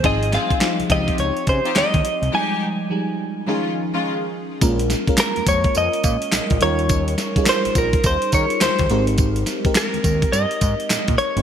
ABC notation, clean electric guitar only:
X:1
M:4/4
L:1/16
Q:"Swing 16ths" 1/4=105
K:Bbdor
V:1 name="Clean electric guitar"
e2 f4 e2 d2 c2 e4 | a12- a2 z2 | z4 B2 d2 e6 d2- | d4 c2 B2 c2 d2 c3 z |
z4 B4 e6 d2 |]